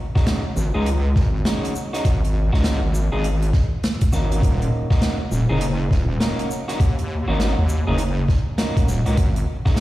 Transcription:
0.15 clean electric guitar G#3 C#4 D#4 F#4, kick, snare
0.27 snare, closed hi-hat
0.56 wobble bass G#1, shaker
0.74 wobble bass C#2, clean electric guitar G#3 C#4 D#4 G#4
0.86 closed hi-hat
1.16 wobble bass G#1, kick, snare
1.45 clean electric guitar G#3 C#4 D#4 F#4, snare, closed hi-hat
1.65 closed hi-hat
1.76 shaker
1.93 clean electric guitar G#3 C#4 D#4 F#4, snare, closed hi-hat
2.05 wobble bass G#1, kick, closed hi-hat
2.24 closed hi-hat
2.53 wobble bass C#2, clean electric guitar G#3 C#4 D#4 F#4, kick, snare
2.64 snare, closed hi-hat
2.83 wobble bass G#1
2.94 shaker
3.12 wobble bass G#1, clean electric guitar G#3 C#4 D#4 G#4
3.24 closed hi-hat
3.42 closed hi-hat
3.53 kick, snare
3.83 snare, closed hi-hat
4.01 kick, closed hi-hat
4.12 wobble bass G#1, clean electric guitar A#3 C#4 D#4 F#4, snare, shaker
4.32 closed hi-hat
4.42 wobble bass D#1, kick, closed hi-hat
4.62 closed hi-hat
4.90 clean electric guitar A#3 C#4 D#4 F#4, kick, snare
5.02 snare, closed hi-hat
5.31 wobble bass D#1, shaker
5.49 wobble bass F#1, clean electric guitar A#3 C#4 D#4 G#4
5.61 closed hi-hat
5.91 wobble bass D#1, kick, snare
6.20 clean electric guitar A#3 C#4 D#4 F#4, snare, closed hi-hat
6.39 closed hi-hat
6.51 shaker
6.68 clean electric guitar A#3 C#4 D#4 F#4, snare, closed hi-hat
6.80 wobble bass D#2, kick, closed hi-hat
6.99 closed hi-hat
7.28 wobble bass G#1, clean electric guitar A#3 C#4 D#4 F#4
7.40 snare, closed hi-hat
7.58 wobble bass D#2
7.69 shaker
7.87 wobble bass F#1, clean electric guitar A#3 C#4 D#4 G#4
7.98 closed hi-hat
8.28 kick, snare
8.58 clean electric guitar A#3 C#4 D#4 F#4, snare, closed hi-hat
8.77 kick, closed hi-hat
8.87 wobble bass D#1, snare, shaker
9.06 wobble bass C#2, clean electric guitar A#3 C#4 D#4 F#4, closed hi-hat
9.17 wobble bass G#1, kick, closed hi-hat
9.36 closed hi-hat
9.65 clean electric guitar G#3 C#4 D#4 F#4, kick, snare
9.77 snare, closed hi-hat

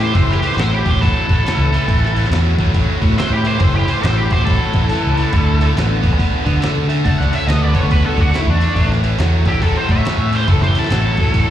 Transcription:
Already playing: picked electric bass A2, distorted electric guitar A2
0.00 distorted electric guitar E3, lead electric guitar G4 C5, open hi-hat
0.14 picked electric bass F#1, distorted electric guitar A2 E3, lead electric guitar A4 C5, kick, open hi-hat
0.28 lead electric guitar E4 G4, snare
0.42 distorted electric guitar A2 E3, lead electric guitar G4, open hi-hat
0.47 lead electric guitar C5
0.52 lead electric guitar A4, snare
0.57 picked electric bass A1, distorted electric guitar A2 F#3, snare, open hi-hat
0.61 lead electric guitar C5
0.73 lead electric guitar E4 G4
0.85 distorted electric guitar A2 F#3, lead electric guitar G4, kick, open hi-hat
0.90 picked electric bass A1, lead electric guitar C5
1.01 distorted electric guitar A2 F#3, lead electric guitar E4 A4, kick, open hi-hat
1.29 picked electric bass A1, distorted electric guitar A2 F#3, kick, open hi-hat
1.44 distorted electric guitar A2 E3, snare, open hi-hat
1.57 picked electric bass C#2
1.72 distorted electric guitar A2 E3, open hi-hat
1.87 picked electric bass A1, distorted electric guitar A2 E3, kick, open hi-hat
2.05 snare
2.14 distorted electric guitar A2 E3, open hi-hat
2.25 snare
2.30 picked electric bass E2, distorted electric guitar A2 F#3, snare, open hi-hat
2.58 distorted electric guitar A2 F#3, kick, open hi-hat
2.66 picked electric bass A1
2.74 distorted electric guitar A2 F#3, kick, open hi-hat
3.00 distorted electric guitar A2 F#3, picked electric bass A2, kick, open hi-hat
3.17 distorted electric guitar A2 E3, lead electric guitar A4 C5, snare, open hi-hat
3.30 picked electric bass A2, lead electric guitar G4
3.36 lead electric guitar E4
3.45 distorted electric guitar A2 E3, lead electric guitar C5, open hi-hat
3.49 lead electric guitar G4
3.59 picked electric bass F#1, distorted electric guitar A2 E3, lead electric guitar C5, kick, open hi-hat
3.64 lead electric guitar A4
3.75 lead electric guitar E4 G4
3.87 distorted electric guitar A2 E3, lead electric guitar C5, open hi-hat
3.93 lead electric guitar G4
4.01 picked electric bass A1, distorted electric guitar A2 F#3, lead electric guitar C5, snare, open hi-hat
4.06 lead electric guitar A4
4.18 lead electric guitar E4 G4
4.30 distorted electric guitar A2 F#3, lead electric guitar G4 C5, kick, open hi-hat
4.39 picked electric bass A1
4.45 distorted electric guitar A2 F#3, lead electric guitar A4, kick, open hi-hat
4.50 lead electric guitar E4
4.73 picked electric bass A1, distorted electric guitar A2 F#3, kick, open hi-hat
4.89 distorted electric guitar A2 E3, open hi-hat
5.04 picked electric bass C#2
5.17 distorted electric guitar A2 E3, open hi-hat
5.33 picked electric bass D2, distorted electric guitar D3 A3, kick, open hi-hat
5.61 distorted electric guitar D3 A3, open hi-hat
5.76 picked electric bass A1, distorted electric guitar D3 B3, snare, open hi-hat
6.01 distorted electric guitar D3 B3, kick, open hi-hat
6.12 picked electric bass D2
6.18 distorted electric guitar D3 B3, kick, open hi-hat
6.45 distorted electric guitar D3 B3, picked electric bass D3, kick, open hi-hat
6.60 distorted electric guitar D3 A3, snare, open hi-hat
6.76 picked electric bass D3
6.88 distorted electric guitar D3 A3, open hi-hat
7.04 picked electric bass C#2, distorted electric guitar D3 A3, lead electric guitar F#5 A5, kick, open hi-hat
7.18 lead electric guitar D5 F#5, snare
7.32 distorted electric guitar D3 A3, lead electric guitar C#5 E5, open hi-hat
7.48 picked electric bass D2, distorted electric guitar D3 B3, lead electric guitar A4 D#5, snare, open hi-hat
7.62 lead electric guitar B4 D5
7.73 distorted electric guitar D3 B3, lead electric guitar A4 C#5, kick, open hi-hat
7.83 picked electric bass D2
7.88 distorted electric guitar D3 B3, lead electric guitar F#4 B4, kick, open hi-hat
8.06 lead electric guitar F#4 A4
8.15 picked electric bass D2, distorted electric guitar D3 B3, kick, open hi-hat
8.21 lead electric guitar D4 F#4
8.31 distorted electric guitar D3 A3, lead electric guitar A3, open hi-hat
8.35 lead electric guitar E4, snare
8.47 picked electric bass E2, lead electric guitar A3 D4
8.59 distorted electric guitar D3 A3, open hi-hat
8.75 picked electric bass A1, distorted electric guitar A2 E3, kick, open hi-hat
8.92 snare
9.02 distorted electric guitar A2 E3, open hi-hat
9.19 picked electric bass E2, distorted electric guitar A2 F#3, snare, open hi-hat
9.45 distorted electric guitar A2 F#3, lead electric guitar E4 G4, kick, open hi-hat
9.54 picked electric bass A1
9.62 distorted electric guitar A2 F#3, lead electric guitar E4 A4, kick, open hi-hat
9.77 lead electric guitar G4 C5
9.89 distorted electric guitar A2 F#3, picked electric bass A2, lead electric guitar C#5 E5, kick, open hi-hat
10.05 distorted electric guitar A2 E3, snare, open hi-hat
10.18 picked electric bass A2
10.32 distorted electric guitar A2 E3, lead electric guitar G4 C5, open hi-hat
10.47 picked electric bass F#1, distorted electric guitar A2 E3, lead electric guitar E4 A4, kick, open hi-hat
10.62 lead electric guitar G4 C5, snare
10.74 distorted electric guitar A2 E3, lead electric guitar E4, open hi-hat
10.79 lead electric guitar A4
10.84 snare
10.89 picked electric bass A1, distorted electric guitar A2 F#3, snare, open hi-hat
11.17 distorted electric guitar A2 F#3, kick, open hi-hat
11.26 picked electric bass A1
11.34 distorted electric guitar A2 F#3, kick, open hi-hat

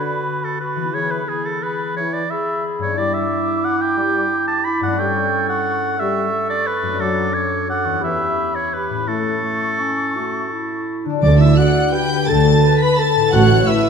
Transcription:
Already playing: french horn section D3, harp D3 B3 F#4 B4, clarinet F#4, oboe B4, flute B5
0.44 oboe A4
0.60 clarinet F#4, oboe B4, flute B5
0.76 harp E3
0.80 harp B3
0.85 harp E4
0.89 french horn section E3, harp G#4
0.93 clarinet G#4, oboe C#5, flute B5
1.11 oboe B4
1.26 clarinet G#4, oboe G#4, flute B5
1.45 oboe A4
1.61 clarinet G#4, oboe B4, flute B5
1.96 french horn section E3, oboe C#5
2.13 oboe D5
2.29 clarinet G#4, oboe E5, flute B5
2.79 harp G2, oboe C#5
2.83 harp B3
2.88 harp D4
2.92 harp E4, flute D6
2.97 french horn section G3, clarinet E4, oboe D5
3.13 oboe E5
3.64 oboe F#5
3.81 oboe G5
3.97 french horn section G3
4.48 oboe A5
4.64 clarinet E4, oboe B5, flute D6
4.81 harp G2, oboe F#5
4.85 harp A3
4.90 harp C#4
4.94 harp E4, clarinet A4, flute C#6
4.99 french horn section G3, oboe G5
5.49 oboe F#5
5.98 french horn section G3, clarinet A4, oboe E5, flute C#6
6.50 oboe D5
6.67 oboe B4
6.83 harp F#2
6.87 harp A3
6.91 harp D4
6.96 french horn section F#3, harp F#4, clarinet A4, oboe A4
7.01 flute D6
7.34 oboe C#5
7.69 clarinet A4, oboe F#5, flute D6
7.85 harp E2, flute C#6
7.89 harp B3
7.94 harp E4
7.98 harp G4, clarinet G4, flute B5
8.04 french horn section E3, oboe E5
8.55 oboe C#5
8.73 clarinet G4, oboe B4, flute B5
8.90 harp A2
8.94 harp C#4
8.99 harp E4
9.03 harp A4
9.07 french horn section A3, clarinet E4, oboe A4, flute C#6
9.43 clarinet A3
9.80 clarinet C#4
10.15 french horn section A3, clarinet F#4
10.52 clarinet E4
11.05 harp D3, clarinet D4
11.09 harp D4
11.14 harp F#4
11.19 tuba D2, cello section D3, timpani D3, french horn section D4, harp A4, violin section D5 D6, oboe D5
11.23 double bass section D2, flute D5
11.38 french horn section E4, flute E5, violin section E5 E6, oboe E5
11.57 french horn section F#4, viola section D5, flute F#5, oboe F#5, violin section F#5 F#6
11.93 french horn section G4, viola section B4, violin section G5 G6, flute G5, oboe G5
12.28 double bass section D2, tuba D2, cello section D3, viola section A4, french horn section A4, flute A5, oboe A5, violin section A5 A6
12.63 viola section B4
12.79 french horn section B4, flute B5, oboe B5, violin section B5 B6
12.98 french horn section A4, viola section A4, violin section A5 A6, oboe A5, flute A5
13.16 harp A2
13.20 harp E4
13.33 tuba A1, double bass section A1, timpani A2, cello section A2, french horn section F#4, viola section C#5, violin section F#5 F#6, oboe F#5, flute F#5
13.67 french horn section E4, viola section B4, violin section E5 E6, oboe E5, flute E5

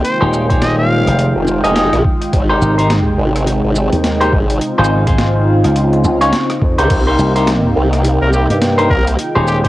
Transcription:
Already playing: analog synth pad G5
0.04 analog synth pad D#3 G#3 F4, trumpet C5, closed hi-hat
0.21 slap bass D#1, clean electric guitar D#4 G4 G#4 C5
0.33 shaker
0.49 clean electric guitar D#4 G4 G#4 C5, kick, closed hi-hat
0.61 trumpet D#5, snare, closed hi-hat
0.78 trumpet F5
1.07 slap bass F1, cross-stick, closed hi-hat
1.19 closed hi-hat
1.36 wobble bass F1
1.47 shaker
1.64 wobble bass F1, clean electric guitar D#4 G4 G#4 D#5, closed hi-hat
1.75 clean electric guitar D#4 G4 G#4 D#5, snare, closed hi-hat
1.93 wobble bass A#1, cross-stick, closed hi-hat
2.04 kick
2.22 closed hi-hat
2.33 wobble bass G#1, analog synth pad C3 D#4, kick, closed hi-hat
2.50 clean electric guitar D#4 G4 A#4 C5
2.61 slap bass G#1, shaker
2.78 clean electric guitar D#4 G4 A#4 C5, closed hi-hat
2.90 snare, closed hi-hat
3.18 wobble bass G#1
3.36 cross-stick, closed hi-hat
3.47 closed hi-hat
3.64 wobble bass G#1
3.76 shaker
3.93 slap bass D#2, closed hi-hat
4.04 snare, closed hi-hat
4.21 clean electric guitar D#4 G4 A#4 C5, closed hi-hat
4.33 wobble bass G#1, kick
4.50 closed hi-hat
4.61 analog synth pad C#3 C4 F4, closed hi-hat
4.78 slap bass G#1, clean electric guitar D#4 F4 G#4 C5
4.84 shaker
5.07 clean electric guitar D#4 F4 G#4 C5, kick, closed hi-hat
5.18 snare, closed hi-hat
5.64 slap bass C#2, cross-stick, closed hi-hat
5.76 closed hi-hat
5.93 closed hi-hat
6.04 slap bass C#2, shaker
6.21 clean electric guitar D#4 F4 G#4 C#5, closed hi-hat
6.33 snare, closed hi-hat
6.50 cross-stick, closed hi-hat
6.62 slap bass F2, kick
6.78 wobble bass C#2, clean electric guitar D#4 G4 A#4 C5, closed hi-hat
6.90 wobble bass C2, analog synth pad C3 A#3 G5, kick, closed hi-hat, crash
7.07 clean electric guitar D#4 G4 A#4 C5
7.18 slap bass C2, shaker
7.35 clean electric guitar D#4 G4 A#4 C5, closed hi-hat
7.47 snare, closed hi-hat
7.76 wobble bass C2
7.93 cross-stick, closed hi-hat
8.04 closed hi-hat
8.21 wobble bass C2, trumpet A#4
8.33 trumpet G4, shaker
8.50 slap bass G2, trumpet G4, closed hi-hat
8.62 snare, closed hi-hat
8.78 clean electric guitar D#4 G4 A#4 C5, closed hi-hat
8.90 wobble bass C2, trumpet A#4, kick
9.07 closed hi-hat
9.19 analog synth pad D#3 G#3 F4, closed hi-hat
9.35 slap bass D#1, clean electric guitar D#4 G4 G#4 C5
9.47 trumpet G4, shaker
9.64 clean electric guitar D#4 G4 G#4 C5, trumpet G4, kick, closed hi-hat

